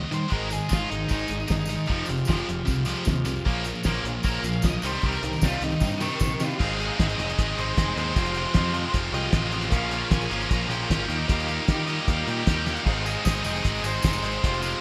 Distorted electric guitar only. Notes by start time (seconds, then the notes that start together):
0.11 D#3 G3
0.29 G#2 D#3 G#3
0.50 G#2 D#3
0.69 G#2 D#3 G#3
0.90 G#2 D#3
1.09 G#2 D#3 G#3
1.29 G#2 D#3
1.48 G#2 D#3
1.69 G#2 D#3
1.87 F2 C3 F3
2.08 F2 C3
2.28 F2 C3 F3
2.47 F2 C3
2.66 F2 C3
2.86 F2 C3 F3
3.05 F2 C3
3.25 F2 C3
3.45 A#2 F3 A#3
3.66 A#2 F3
3.86 A#2 F3 A#3
4.04 A#2 F3
4.24 A#2 F3 A#3
4.42 A#2 F3
4.63 A#2 F3
4.83 C3 D#3 G3
5.03 C3 D#3 G3
5.23 C3 D#3
5.43 C3 D#3 G3
5.62 C3 D#3
5.82 C3 D#3
6.00 C3 D#3 G3
6.21 C3 D#3
6.40 C3 D#3
6.60 G#2 D#3 G#3 C4 D#4 G#4
6.78 G#2 D#3 G#3 C4 D#4 G#4
6.97 G#2 D#3 G#3 C4 D#4 G#4
7.17 G#2 D#3 G#3 C4 D#4 G#4
7.37 G#2 D#3 G#3 C4 D#4 G#4
7.57 G#2 D#3 G#3 C4 D#4 G#4
7.77 G#2 D#3 G#3 C4 D#4 G#4
7.98 G#2 D#3 G#3 C4 D#4 G#4
8.15 F2 C3 F3 G#3 C4 F4
8.35 F2 C3 F3 G#3 C4 F4
8.54 F2 C3 F3 G#3 C4 F4
8.73 F2 C3 F3 G#3 C4 F4
8.93 F2 C3 F3 G#3 C4 F4
9.13 F2 C3 F3 G#3 C4 F4
9.33 F2 C3 F3 G#3 C4 F4
9.52 F2 C3 F3 G#3 C4 F4
9.72 A#2 F3 A#3 C#4 F4
9.92 A#2 F3 A#3 C#4 F4
10.11 A#2 F3 A#3 C#4 F4
10.29 A#2 F3 A#3 C#4 F4
10.48 A#2 F3 A#3 C#4 F4
10.68 A#2 F3 A#3 C#4 F4
10.88 A#2 F3 A#3 C#4 F4
11.08 D#3 G3 A#3 D#4 G4
11.27 D#3 G3 A#3 D#4 G4
11.48 D#3 G3 A#3 D#4 G4
11.69 D#3 G3 A#3 D#4 G4
11.88 D#3 G3 A#3 D#4 G4
12.09 D#3 G3 A#3 D#4 G4
12.28 D#3 G3 A#3 D#4 G4
12.48 D#3 G3 A#3 D#4 G4
12.65 D#3 G3 A#3 D#4 G4
12.85 G#2 D#3 G#3 C4 D#4 G#4
13.05 G#2 D#3 G#3 C4 D#4 G#4
13.23 G#2 D#3 G#3 C4 D#4 G#4
13.43 G#2 D#3 G#3 C4 D#4 G#4
13.62 G#2 D#3 G#3 C4 D#4 G#4
13.82 G#2 D#3 G#3 C4 D#4 G#4
14.02 G#2 D#3 G#3 C4 D#4 G#4
14.22 G#2 D#3 G#3 C4 D#4 G#4
14.43 F2 C3 F3 G#3 C4 F4
14.60 F2 C3 F3 G#3 C4 F4